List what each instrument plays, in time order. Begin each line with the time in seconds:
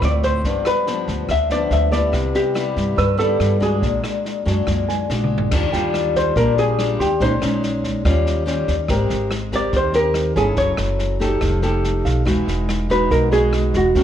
Already playing: nylon-string guitar A2 A3 C4 F4
0.02 upright bass D2, hollow-body jazz guitar D5, cross-stick, snare
0.23 hollow-body jazz guitar C5, kick, snare
0.44 upright bass G1, nylon-string guitar G2 F3 B3 D4, kick, snare
0.65 hollow-body jazz guitar B4, cross-stick, snare
0.87 nylon-string guitar F3 B3 D4, snare
1.08 upright bass D2, kick, snare
1.29 upright bass D2, nylon-string guitar D3, hollow-body jazz guitar E5, kick, cross-stick, snare
1.50 nylon-string guitar F3 B3 D4, hollow-body jazz guitar D5, snare
1.71 upright bass D2, hollow-body jazz guitar E5, snare
1.92 nylon-string guitar G3 B3 E4, hollow-body jazz guitar D5, kick, snare
2.12 upright bass C2, nylon-string guitar C3, kick, cross-stick, snare
2.34 hollow-body jazz guitar G4, snare
2.55 nylon-string guitar G3 B3 E4, cross-stick, snare
2.77 upright bass G2, kick, snare
2.96 nylon-string guitar G2, upright bass G2, hollow-body jazz guitar B4, grand piano E6, kick, snare
3.18 nylon-string guitar G3 B3 E4, hollow-body jazz guitar A4, grand piano E6, snare
3.40 upright bass G2, cross-stick, snare
3.60 nylon-string guitar G#3 D4 F#4, hollow-body jazz guitar G#4, kick, snare
3.82 upright bass A#1, nylon-string guitar A#2, kick, snare
4.04 cross-stick, snare
4.25 snare
4.46 upright bass F#2, nylon-string guitar G#3 D4 F#4, kick, snare
4.67 upright bass F#2, nylon-string guitar A#2, kick, cross-stick, snare
4.88 grand piano G#5, snare
5.10 upright bass A#1, nylon-string guitar G#3 D4 F#4, snare
5.24 mid tom
5.38 floor tom
5.51 upright bass D#2, nylon-string guitar D#3 G3 D4 F4, kick, cross-stick, snare, crash
5.72 upright bass D#2, nylon-string guitar G3 D4 F4, grand piano G5, snare
5.94 cross-stick, snare
6.15 hollow-body jazz guitar C5, kick, snare
6.36 upright bass A#1, nylon-string guitar A#2 G3 D4 F4, hollow-body jazz guitar A#4, kick, snare
6.58 hollow-body jazz guitar G#4, snare
6.79 nylon-string guitar G3 D4 F4, cross-stick, snare
6.99 upright bass D#2, hollow-body jazz guitar G4, grand piano C6, kick, snare
7.20 upright bass A#1, nylon-string guitar A#2 G#3 C#4 D#4, hollow-body jazz guitar C5, kick, snare
7.42 upright bass A#1, nylon-string guitar G#3 C#4 D#4, cross-stick, snare
7.63 snare
7.84 kick, snare
8.05 upright bass D#2, nylon-string guitar D#3 G3 C#4 F4, kick, cross-stick, snare
8.26 snare
8.46 nylon-string guitar G3 C#4 F4, snare
8.68 upright bass D#2, kick, snare
8.88 upright bass G#1, nylon-string guitar G#3 C4 G4 A#4, kick, cross-stick, snare
9.10 upright bass G#1, snare
9.31 cross-stick, snare
9.52 nylon-string guitar C4 G4 A#4, hollow-body jazz guitar D5, kick, snare
9.72 upright bass D#2, nylon-string guitar D#3, kick, snare
9.76 hollow-body jazz guitar C5
9.93 nylon-string guitar C4 G4 A#4, hollow-body jazz guitar A#4, snare
10.14 cross-stick, snare
10.36 upright bass G1, nylon-string guitar C#4 E4 A4, hollow-body jazz guitar G#4, grand piano G#5, kick, snare
10.56 upright bass F#1, nylon-string guitar F#3, hollow-body jazz guitar C#5, kick, snare
10.78 upright bass F#1, cross-stick, snare
10.99 snare
11.20 nylon-string guitar D#4 G4 A4, kick, snare
11.41 upright bass F1, nylon-string guitar F3, kick, cross-stick, snare
11.62 nylon-string guitar D#4 G4 A4, snare
11.84 snare
12.05 upright bass B1, grand piano F5, kick, snare
12.25 upright bass E1, nylon-string guitar E3 G#3 D#4 F#4, kick, cross-stick, snare
12.48 upright bass E1, snare
12.69 cross-stick, snare
12.90 nylon-string guitar G#3 D#4 F#4, hollow-body jazz guitar B4, kick, snare
13.11 upright bass B1, nylon-string guitar B2, hollow-body jazz guitar A#4, kick, snare
13.31 nylon-string guitar G#3 D#4 F#4, hollow-body jazz guitar G#4, snare
13.53 cross-stick, snare
13.74 upright bass E1, hollow-body jazz guitar F#4, kick, snare
13.95 upright bass D#2, nylon-string guitar D#3 G#3 C#4 F#4, kick, snare